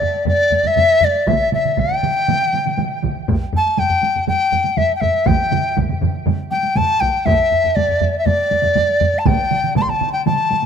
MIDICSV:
0, 0, Header, 1, 3, 480
1, 0, Start_track
1, 0, Tempo, 499168
1, 1223, Time_signature, 4, 2, 24, 8
1, 10249, End_track
2, 0, Start_track
2, 0, Title_t, "Dizi"
2, 0, Program_c, 0, 73
2, 0, Note_on_c, 0, 74, 70
2, 262, Note_off_c, 0, 74, 0
2, 272, Note_on_c, 0, 74, 78
2, 645, Note_on_c, 0, 76, 80
2, 659, Note_off_c, 0, 74, 0
2, 1004, Note_on_c, 0, 74, 70
2, 1018, Note_off_c, 0, 76, 0
2, 1229, Note_on_c, 0, 76, 69
2, 1244, Note_off_c, 0, 74, 0
2, 1467, Note_off_c, 0, 76, 0
2, 1480, Note_on_c, 0, 76, 65
2, 1728, Note_on_c, 0, 79, 73
2, 1742, Note_off_c, 0, 76, 0
2, 2921, Note_off_c, 0, 79, 0
2, 3429, Note_on_c, 0, 81, 77
2, 3644, Note_on_c, 0, 79, 80
2, 3659, Note_off_c, 0, 81, 0
2, 4109, Note_off_c, 0, 79, 0
2, 4115, Note_on_c, 0, 79, 81
2, 4589, Note_on_c, 0, 76, 72
2, 4604, Note_off_c, 0, 79, 0
2, 4760, Note_off_c, 0, 76, 0
2, 4766, Note_on_c, 0, 79, 50
2, 4814, Note_on_c, 0, 76, 68
2, 4829, Note_off_c, 0, 79, 0
2, 5067, Note_on_c, 0, 79, 63
2, 5081, Note_off_c, 0, 76, 0
2, 5550, Note_off_c, 0, 79, 0
2, 6259, Note_on_c, 0, 79, 75
2, 6506, Note_on_c, 0, 81, 87
2, 6521, Note_off_c, 0, 79, 0
2, 6735, Note_on_c, 0, 79, 78
2, 6749, Note_off_c, 0, 81, 0
2, 6978, Note_on_c, 0, 76, 69
2, 6993, Note_off_c, 0, 79, 0
2, 7458, Note_on_c, 0, 74, 70
2, 7472, Note_off_c, 0, 76, 0
2, 7867, Note_off_c, 0, 74, 0
2, 7873, Note_on_c, 0, 76, 51
2, 7941, Note_on_c, 0, 74, 77
2, 7955, Note_off_c, 0, 76, 0
2, 8833, Note_on_c, 0, 81, 56
2, 8848, Note_off_c, 0, 74, 0
2, 8913, Note_on_c, 0, 79, 73
2, 8927, Note_off_c, 0, 81, 0
2, 9383, Note_off_c, 0, 79, 0
2, 9389, Note_on_c, 0, 81, 74
2, 9442, Note_on_c, 0, 84, 62
2, 9456, Note_off_c, 0, 81, 0
2, 9515, Note_on_c, 0, 81, 76
2, 9529, Note_off_c, 0, 84, 0
2, 9732, Note_off_c, 0, 81, 0
2, 9738, Note_on_c, 0, 79, 68
2, 9852, Note_off_c, 0, 79, 0
2, 9865, Note_on_c, 0, 81, 79
2, 10249, Note_off_c, 0, 81, 0
2, 10249, End_track
3, 0, Start_track
3, 0, Title_t, "Taiko and cinematic ensemble drums"
3, 15, Note_on_c, 9, 45, 77
3, 111, Note_off_c, 9, 45, 0
3, 139, Note_on_c, 9, 48, 19
3, 235, Note_off_c, 9, 48, 0
3, 242, Note_on_c, 9, 45, 87
3, 255, Note_on_c, 9, 48, 55
3, 338, Note_off_c, 9, 45, 0
3, 351, Note_off_c, 9, 48, 0
3, 383, Note_on_c, 9, 48, 16
3, 479, Note_off_c, 9, 48, 0
3, 486, Note_on_c, 9, 45, 59
3, 502, Note_on_c, 9, 48, 46
3, 583, Note_off_c, 9, 45, 0
3, 598, Note_off_c, 9, 48, 0
3, 609, Note_on_c, 9, 45, 60
3, 628, Note_on_c, 9, 48, 39
3, 706, Note_off_c, 9, 45, 0
3, 724, Note_off_c, 9, 48, 0
3, 731, Note_on_c, 9, 45, 81
3, 743, Note_on_c, 9, 48, 53
3, 827, Note_off_c, 9, 45, 0
3, 839, Note_off_c, 9, 48, 0
3, 871, Note_on_c, 9, 48, 17
3, 967, Note_off_c, 9, 48, 0
3, 970, Note_on_c, 9, 45, 79
3, 990, Note_on_c, 9, 48, 42
3, 1066, Note_off_c, 9, 45, 0
3, 1086, Note_off_c, 9, 48, 0
3, 1110, Note_on_c, 9, 48, 18
3, 1206, Note_off_c, 9, 48, 0
3, 1219, Note_on_c, 9, 41, 84
3, 1223, Note_on_c, 9, 47, 85
3, 1227, Note_on_c, 9, 48, 53
3, 1315, Note_off_c, 9, 41, 0
3, 1320, Note_off_c, 9, 47, 0
3, 1323, Note_off_c, 9, 48, 0
3, 1352, Note_on_c, 9, 48, 18
3, 1448, Note_off_c, 9, 48, 0
3, 1464, Note_on_c, 9, 47, 61
3, 1464, Note_on_c, 9, 48, 45
3, 1560, Note_off_c, 9, 47, 0
3, 1560, Note_off_c, 9, 48, 0
3, 1591, Note_on_c, 9, 47, 56
3, 1596, Note_on_c, 9, 48, 18
3, 1688, Note_off_c, 9, 47, 0
3, 1693, Note_off_c, 9, 48, 0
3, 1705, Note_on_c, 9, 41, 61
3, 1710, Note_on_c, 9, 48, 56
3, 1712, Note_on_c, 9, 47, 61
3, 1801, Note_off_c, 9, 41, 0
3, 1806, Note_off_c, 9, 48, 0
3, 1808, Note_off_c, 9, 47, 0
3, 1835, Note_on_c, 9, 47, 62
3, 1835, Note_on_c, 9, 48, 18
3, 1931, Note_off_c, 9, 47, 0
3, 1931, Note_off_c, 9, 48, 0
3, 1953, Note_on_c, 9, 47, 78
3, 1954, Note_on_c, 9, 48, 44
3, 2050, Note_off_c, 9, 47, 0
3, 2050, Note_off_c, 9, 48, 0
3, 2076, Note_on_c, 9, 48, 17
3, 2172, Note_off_c, 9, 48, 0
3, 2195, Note_on_c, 9, 47, 91
3, 2205, Note_on_c, 9, 48, 57
3, 2291, Note_off_c, 9, 47, 0
3, 2302, Note_off_c, 9, 48, 0
3, 2319, Note_on_c, 9, 48, 17
3, 2415, Note_off_c, 9, 48, 0
3, 2431, Note_on_c, 9, 47, 59
3, 2438, Note_on_c, 9, 48, 41
3, 2528, Note_off_c, 9, 47, 0
3, 2534, Note_off_c, 9, 48, 0
3, 2557, Note_on_c, 9, 48, 38
3, 2561, Note_on_c, 9, 47, 58
3, 2654, Note_off_c, 9, 48, 0
3, 2657, Note_off_c, 9, 47, 0
3, 2667, Note_on_c, 9, 48, 49
3, 2674, Note_on_c, 9, 47, 80
3, 2764, Note_off_c, 9, 48, 0
3, 2770, Note_off_c, 9, 47, 0
3, 2790, Note_on_c, 9, 48, 17
3, 2886, Note_off_c, 9, 48, 0
3, 2910, Note_on_c, 9, 48, 39
3, 2913, Note_on_c, 9, 47, 81
3, 2921, Note_on_c, 9, 41, 54
3, 3006, Note_off_c, 9, 48, 0
3, 3009, Note_off_c, 9, 47, 0
3, 3017, Note_off_c, 9, 41, 0
3, 3043, Note_on_c, 9, 48, 16
3, 3139, Note_off_c, 9, 48, 0
3, 3155, Note_on_c, 9, 45, 85
3, 3157, Note_on_c, 9, 41, 75
3, 3159, Note_on_c, 9, 48, 54
3, 3251, Note_off_c, 9, 45, 0
3, 3253, Note_off_c, 9, 41, 0
3, 3255, Note_off_c, 9, 48, 0
3, 3279, Note_on_c, 9, 48, 17
3, 3375, Note_off_c, 9, 48, 0
3, 3392, Note_on_c, 9, 45, 81
3, 3397, Note_on_c, 9, 48, 42
3, 3488, Note_off_c, 9, 45, 0
3, 3493, Note_off_c, 9, 48, 0
3, 3523, Note_on_c, 9, 48, 17
3, 3619, Note_off_c, 9, 48, 0
3, 3631, Note_on_c, 9, 45, 65
3, 3631, Note_on_c, 9, 48, 58
3, 3727, Note_off_c, 9, 45, 0
3, 3727, Note_off_c, 9, 48, 0
3, 3748, Note_on_c, 9, 45, 60
3, 3756, Note_on_c, 9, 48, 18
3, 3844, Note_off_c, 9, 45, 0
3, 3852, Note_off_c, 9, 48, 0
3, 3867, Note_on_c, 9, 45, 54
3, 3872, Note_on_c, 9, 48, 46
3, 3964, Note_off_c, 9, 45, 0
3, 3969, Note_off_c, 9, 48, 0
3, 3994, Note_on_c, 9, 48, 18
3, 3998, Note_on_c, 9, 45, 58
3, 4090, Note_off_c, 9, 48, 0
3, 4094, Note_off_c, 9, 45, 0
3, 4111, Note_on_c, 9, 48, 57
3, 4116, Note_on_c, 9, 45, 86
3, 4207, Note_off_c, 9, 48, 0
3, 4212, Note_off_c, 9, 45, 0
3, 4229, Note_on_c, 9, 48, 18
3, 4325, Note_off_c, 9, 48, 0
3, 4352, Note_on_c, 9, 48, 43
3, 4355, Note_on_c, 9, 45, 80
3, 4448, Note_off_c, 9, 48, 0
3, 4451, Note_off_c, 9, 45, 0
3, 4463, Note_on_c, 9, 48, 41
3, 4559, Note_off_c, 9, 48, 0
3, 4585, Note_on_c, 9, 48, 56
3, 4590, Note_on_c, 9, 45, 83
3, 4681, Note_off_c, 9, 48, 0
3, 4686, Note_off_c, 9, 45, 0
3, 4706, Note_on_c, 9, 48, 20
3, 4802, Note_off_c, 9, 48, 0
3, 4823, Note_on_c, 9, 45, 85
3, 4823, Note_on_c, 9, 48, 45
3, 4919, Note_off_c, 9, 45, 0
3, 4919, Note_off_c, 9, 48, 0
3, 4949, Note_on_c, 9, 48, 20
3, 5045, Note_off_c, 9, 48, 0
3, 5059, Note_on_c, 9, 48, 65
3, 5063, Note_on_c, 9, 45, 79
3, 5064, Note_on_c, 9, 41, 88
3, 5074, Note_on_c, 9, 47, 88
3, 5156, Note_off_c, 9, 48, 0
3, 5159, Note_off_c, 9, 45, 0
3, 5160, Note_off_c, 9, 41, 0
3, 5171, Note_off_c, 9, 47, 0
3, 5186, Note_on_c, 9, 48, 20
3, 5282, Note_off_c, 9, 48, 0
3, 5299, Note_on_c, 9, 45, 87
3, 5306, Note_on_c, 9, 48, 51
3, 5316, Note_on_c, 9, 47, 83
3, 5395, Note_off_c, 9, 45, 0
3, 5402, Note_off_c, 9, 48, 0
3, 5412, Note_off_c, 9, 47, 0
3, 5426, Note_on_c, 9, 48, 19
3, 5522, Note_off_c, 9, 48, 0
3, 5547, Note_on_c, 9, 45, 64
3, 5552, Note_on_c, 9, 48, 62
3, 5553, Note_on_c, 9, 41, 64
3, 5553, Note_on_c, 9, 47, 61
3, 5643, Note_off_c, 9, 45, 0
3, 5648, Note_off_c, 9, 48, 0
3, 5649, Note_off_c, 9, 41, 0
3, 5649, Note_off_c, 9, 47, 0
3, 5667, Note_on_c, 9, 47, 62
3, 5670, Note_on_c, 9, 45, 62
3, 5672, Note_on_c, 9, 48, 20
3, 5763, Note_off_c, 9, 47, 0
3, 5766, Note_off_c, 9, 45, 0
3, 5768, Note_off_c, 9, 48, 0
3, 5782, Note_on_c, 9, 47, 81
3, 5788, Note_on_c, 9, 45, 80
3, 5878, Note_off_c, 9, 47, 0
3, 5884, Note_off_c, 9, 45, 0
3, 5906, Note_on_c, 9, 48, 19
3, 6002, Note_off_c, 9, 48, 0
3, 6023, Note_on_c, 9, 48, 57
3, 6025, Note_on_c, 9, 45, 86
3, 6032, Note_on_c, 9, 47, 84
3, 6120, Note_off_c, 9, 48, 0
3, 6121, Note_off_c, 9, 45, 0
3, 6128, Note_off_c, 9, 47, 0
3, 6143, Note_on_c, 9, 48, 18
3, 6239, Note_off_c, 9, 48, 0
3, 6264, Note_on_c, 9, 48, 46
3, 6360, Note_off_c, 9, 48, 0
3, 6375, Note_on_c, 9, 48, 41
3, 6471, Note_off_c, 9, 48, 0
3, 6496, Note_on_c, 9, 48, 55
3, 6508, Note_on_c, 9, 45, 82
3, 6509, Note_on_c, 9, 47, 78
3, 6592, Note_off_c, 9, 48, 0
3, 6604, Note_off_c, 9, 45, 0
3, 6605, Note_off_c, 9, 47, 0
3, 6624, Note_on_c, 9, 48, 18
3, 6721, Note_off_c, 9, 48, 0
3, 6739, Note_on_c, 9, 48, 41
3, 6751, Note_on_c, 9, 41, 61
3, 6835, Note_off_c, 9, 48, 0
3, 6848, Note_off_c, 9, 41, 0
3, 6862, Note_on_c, 9, 48, 17
3, 6958, Note_off_c, 9, 48, 0
3, 6976, Note_on_c, 9, 48, 55
3, 6988, Note_on_c, 9, 41, 83
3, 6989, Note_on_c, 9, 45, 77
3, 7073, Note_off_c, 9, 48, 0
3, 7084, Note_off_c, 9, 41, 0
3, 7085, Note_off_c, 9, 45, 0
3, 7102, Note_on_c, 9, 48, 17
3, 7198, Note_off_c, 9, 48, 0
3, 7223, Note_on_c, 9, 45, 58
3, 7320, Note_off_c, 9, 45, 0
3, 7341, Note_on_c, 9, 48, 18
3, 7352, Note_on_c, 9, 45, 62
3, 7437, Note_off_c, 9, 48, 0
3, 7448, Note_off_c, 9, 45, 0
3, 7465, Note_on_c, 9, 45, 62
3, 7468, Note_on_c, 9, 48, 60
3, 7561, Note_off_c, 9, 45, 0
3, 7564, Note_off_c, 9, 48, 0
3, 7583, Note_on_c, 9, 45, 59
3, 7585, Note_on_c, 9, 48, 19
3, 7680, Note_off_c, 9, 45, 0
3, 7681, Note_off_c, 9, 48, 0
3, 7699, Note_on_c, 9, 45, 78
3, 7707, Note_on_c, 9, 48, 51
3, 7795, Note_off_c, 9, 45, 0
3, 7803, Note_off_c, 9, 48, 0
3, 7834, Note_on_c, 9, 48, 19
3, 7930, Note_off_c, 9, 48, 0
3, 7941, Note_on_c, 9, 45, 84
3, 7948, Note_on_c, 9, 48, 63
3, 8037, Note_off_c, 9, 45, 0
3, 8044, Note_off_c, 9, 48, 0
3, 8069, Note_on_c, 9, 48, 19
3, 8166, Note_off_c, 9, 48, 0
3, 8183, Note_on_c, 9, 48, 48
3, 8186, Note_on_c, 9, 45, 60
3, 8279, Note_off_c, 9, 48, 0
3, 8282, Note_off_c, 9, 45, 0
3, 8297, Note_on_c, 9, 48, 48
3, 8301, Note_on_c, 9, 45, 60
3, 8394, Note_off_c, 9, 48, 0
3, 8397, Note_off_c, 9, 45, 0
3, 8417, Note_on_c, 9, 48, 58
3, 8422, Note_on_c, 9, 45, 84
3, 8514, Note_off_c, 9, 48, 0
3, 8518, Note_off_c, 9, 45, 0
3, 8545, Note_on_c, 9, 48, 21
3, 8642, Note_off_c, 9, 48, 0
3, 8661, Note_on_c, 9, 45, 84
3, 8664, Note_on_c, 9, 48, 50
3, 8757, Note_off_c, 9, 45, 0
3, 8760, Note_off_c, 9, 48, 0
3, 8785, Note_on_c, 9, 48, 21
3, 8881, Note_off_c, 9, 48, 0
3, 8900, Note_on_c, 9, 47, 86
3, 8903, Note_on_c, 9, 48, 69
3, 8907, Note_on_c, 9, 41, 92
3, 8996, Note_off_c, 9, 47, 0
3, 8999, Note_off_c, 9, 48, 0
3, 9003, Note_off_c, 9, 41, 0
3, 9022, Note_on_c, 9, 48, 21
3, 9118, Note_off_c, 9, 48, 0
3, 9142, Note_on_c, 9, 48, 54
3, 9145, Note_on_c, 9, 47, 61
3, 9239, Note_off_c, 9, 48, 0
3, 9241, Note_off_c, 9, 47, 0
3, 9262, Note_on_c, 9, 48, 21
3, 9269, Note_on_c, 9, 47, 58
3, 9358, Note_off_c, 9, 48, 0
3, 9365, Note_off_c, 9, 47, 0
3, 9385, Note_on_c, 9, 47, 61
3, 9385, Note_on_c, 9, 48, 69
3, 9387, Note_on_c, 9, 41, 65
3, 9481, Note_off_c, 9, 47, 0
3, 9481, Note_off_c, 9, 48, 0
3, 9483, Note_off_c, 9, 41, 0
3, 9503, Note_on_c, 9, 48, 21
3, 9505, Note_on_c, 9, 47, 58
3, 9600, Note_off_c, 9, 48, 0
3, 9601, Note_off_c, 9, 47, 0
3, 9625, Note_on_c, 9, 47, 85
3, 9721, Note_off_c, 9, 47, 0
3, 9746, Note_on_c, 9, 48, 21
3, 9842, Note_off_c, 9, 48, 0
3, 9865, Note_on_c, 9, 48, 61
3, 9870, Note_on_c, 9, 47, 86
3, 9961, Note_off_c, 9, 48, 0
3, 9966, Note_off_c, 9, 47, 0
3, 9986, Note_on_c, 9, 48, 20
3, 10082, Note_off_c, 9, 48, 0
3, 10100, Note_on_c, 9, 48, 49
3, 10108, Note_on_c, 9, 47, 60
3, 10196, Note_off_c, 9, 48, 0
3, 10204, Note_off_c, 9, 47, 0
3, 10215, Note_on_c, 9, 48, 46
3, 10249, Note_off_c, 9, 48, 0
3, 10249, End_track
0, 0, End_of_file